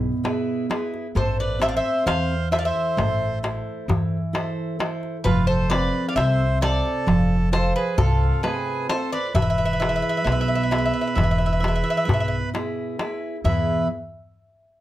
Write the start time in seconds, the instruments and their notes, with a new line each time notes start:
Already playing: upright bass B1, steel-string acoustic guitar B2
0.24 steel-string acoustic guitar E4 G#4 B4, darbuka tek
0.69 steel-string acoustic guitar E4 G#4 B4, darbuka tek
0.94 darbuka tek
1.15 upright bass A1, steel-string acoustic guitar A3, accordion A4, bouzouki C5, darbuka dum
1.39 accordion B4, bouzouki D5
1.59 steel-string acoustic guitar C4 A4 C5, accordion C5, bouzouki E5, darbuka tek
1.68 accordion D5, bouzouki F5
1.75 accordion C5, bouzouki E5
1.85 darbuka tek
2.06 upright bass E2, steel-string acoustic guitar E3, accordion C5, bouzouki F5, darbuka tek
2.31 darbuka tek
2.51 steel-string acoustic guitar E4 A4 C5, accordion C5, bouzouki E5, darbuka tek
2.58 accordion D5, bouzouki F5
2.65 accordion C5, bouzouki E5
2.75 darbuka tek
2.97 upright bass A1, steel-string acoustic guitar A3, darbuka tek, darbuka dum
3.43 steel-string acoustic guitar E4 A4 C5, darbuka tek
3.88 upright bass E2, steel-string acoustic guitar E3, darbuka dum
4.33 steel-string acoustic guitar E4 A4 C5, darbuka tek
4.79 steel-string acoustic guitar E4 A4 C5, darbuka tek
5.03 darbuka tek
5.24 upright bass F1, steel-string acoustic guitar F3, accordion F4, bouzouki B4, darbuka dum
5.47 accordion A4, bouzouki C5
5.70 steel-string acoustic guitar C4 F4 A4, accordion B4, bouzouki D5, darbuka tek
5.95 darbuka tek
6.09 accordion D5, bouzouki F5
6.16 upright bass C2, steel-string acoustic guitar C3, accordion C5, bouzouki E5, darbuka tek
6.40 darbuka tek
6.61 steel-string acoustic guitar F4 A4 C5, accordion A4, bouzouki D5, darbuka tek
6.86 darbuka tek
7.07 upright bass F1, steel-string acoustic guitar F3, darbuka tek, darbuka dum
7.52 steel-string acoustic guitar F4 A4 C5, accordion A4, bouzouki C5, darbuka tek
7.76 accordion G#4, bouzouki B4
7.98 upright bass C2, steel-string acoustic guitar C3, accordion F4, bouzouki A4, darbuka dum
8.43 steel-string acoustic guitar A3 C4 F4, accordion G#4, bouzouki B4, darbuka tek
8.89 steel-string acoustic guitar F4 A4 C5, accordion A4, bouzouki C5, darbuka tek
9.12 accordion B4, bouzouki D5, darbuka tek
9.34 upright bass E1, steel-string acoustic guitar E3, accordion B4, bouzouki E5, darbuka dum
9.42 bouzouki E5
9.50 bouzouki E5
9.58 bouzouki E5, darbuka tek
9.65 bouzouki E5
9.73 bouzouki E5
9.80 steel-string acoustic guitar E4 G#4 B4, bouzouki E5, darbuka tek
9.89 bouzouki E5
9.96 bouzouki E5
10.02 bouzouki E5
10.09 bouzouki E5
10.17 bouzouki E5
10.24 upright bass B1, steel-string acoustic guitar B2, bouzouki E5, darbuka tek
10.32 bouzouki E5
10.41 bouzouki E5
10.48 bouzouki E5
10.55 bouzouki E5
10.63 bouzouki E5
10.71 steel-string acoustic guitar E4 G#4 B4, bouzouki E5, darbuka tek
10.78 bouzouki E5
10.85 bouzouki E5
10.94 bouzouki E5
11.01 bouzouki E5
11.07 bouzouki E5
11.15 upright bass E1, steel-string acoustic guitar E3, bouzouki E5, darbuka tek, darbuka dum
11.23 bouzouki E5
11.31 bouzouki E5
11.38 bouzouki E5, darbuka tek
11.46 bouzouki E5
11.53 bouzouki E5
11.60 steel-string acoustic guitar E4 G#4 B4, bouzouki E5, darbuka tek
11.68 bouzouki E5
11.76 bouzouki E5
11.84 bouzouki E5
11.90 bouzouki E5
11.97 bouzouki E5
12.05 upright bass B1, steel-string acoustic guitar B2, bouzouki E5, darbuka dum
12.14 bouzouki E5
12.20 bouzouki E5
12.28 bouzouki E5
12.54 steel-string acoustic guitar E4 G#4 B4, darbuka tek
12.99 steel-string acoustic guitar E4 G#4 B4, darbuka tek
13.44 steel-string acoustic guitar E2 B2 E3 B3 G#4 B4, upright bass E2, accordion B4, bouzouki E5, darbuka dum